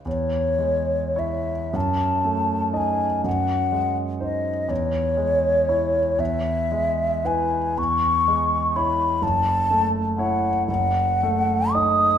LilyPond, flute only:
\new Staff \with { instrumentName = "Flute" } { \time 6/8 \key cis \minor \tempo 4. = 40 cis''4 e''8 a''4 gis''8 | fis''4 dis''8 cis''4. | e''4 gis''8 cis'''4 b''8 | a''4 fis''8 fis''4 dis'''8 | }